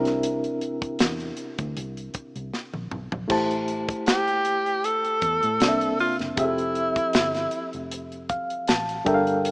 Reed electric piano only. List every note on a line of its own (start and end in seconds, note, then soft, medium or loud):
0.00 2.87 C3 medium
0.00 2.87 C4 medium
0.00 2.88 D4 medium
0.00 2.92 E4 medium
0.00 2.88 A#4 medium
3.28 5.55 A3 medium
3.28 5.56 E4 medium
3.28 5.56 G4 medium
3.28 5.57 C5 medium
3.32 5.57 A5 medium
5.60 6.37 C3 medium
5.60 6.38 A#3 medium
5.60 6.35 C4 medium
5.60 6.38 D4 medium
5.60 5.68 D5 soft
5.68 6.38 E5 medium
6.36 9.02 F3 medium
6.36 9.02 C4 medium
6.36 9.02 G4 medium
6.36 6.45 G#4 soft
6.36 9.03 E5 medium
6.45 9.05 A4 soft
8.30 8.65 F5 medium
8.69 9.04 A5 medium
9.05 9.51 G3 medium
9.05 9.51 D4 medium
9.05 9.51 A4 medium
9.05 9.51 A#4 medium
9.05 9.14 E5 medium
9.05 9.42 G5 medium
9.14 9.51 F5 medium